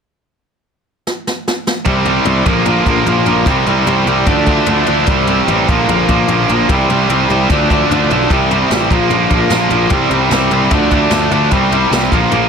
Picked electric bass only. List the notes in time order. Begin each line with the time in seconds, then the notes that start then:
1.86 C2
2.25 C2
2.46 A#1
2.66 A#1
2.85 A#1
3.05 A#1
3.26 A#1
3.46 C2
3.66 C2
3.86 C2
4.06 C2
4.26 D2
4.68 D2
4.88 D2
5.07 C2
5.47 A1
5.69 A#1
5.88 A#1
6.09 A#1
6.28 A#1
6.49 A#1
6.69 C2
6.89 C2
7.09 C2
7.29 C2
7.49 D2
7.90 D2
8.09 B1
8.30 C2
8.70 A1
8.91 A#1
9.10 A#1
9.31 A#1
9.50 A#1
9.69 A#1
9.91 C2
10.10 C2
10.30 C2
10.51 C2
10.71 D2
11.10 D2
11.31 D2
11.52 C2
11.91 C2
12.11 A#1
12.32 A#1